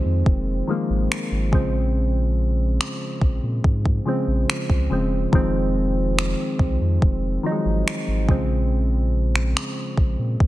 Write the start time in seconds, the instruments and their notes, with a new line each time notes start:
Already playing: synth keys D#3 F3 G#3 A#3 C4
0.05 sub bass F2
0.26 sub bass F1, kick
0.67 synth keys D#3 F3 G#3 A#3
0.90 sub bass G#1
1.12 finger snap
1.31 sub bass G#1
1.52 sub bass A#1, synth keys C#3 F3 G#3 C4, kick
2.81 finger snap
3.21 sub bass A#1, kick
3.43 sub bass A#2
3.64 sub bass G#2, kick
3.86 kick
4.05 synth keys C#3 F3 G#3 C4
4.27 sub bass A#1
4.50 finger snap
4.70 sub bass C#2, kick
4.90 sub bass E1, synth keys C#3 F3 G#3 C4
5.32 sub bass F1, synth keys D#3 F3 G#3 C4, kick
6.19 finger snap
6.59 sub bass C2, kick
6.81 sub bass F2
7.02 sub bass F1, kick
7.43 synth keys D#3 F3 F#3 D#4
7.52 synth keys G#3
7.65 sub bass G#1
7.88 finger snap
8.08 sub bass G#1
8.28 sub bass A#1, synth keys C#3 F3 G#3 C4, kick
9.36 finger snap
9.57 finger snap
9.97 sub bass A#1, kick
10.19 sub bass A#2
10.40 kick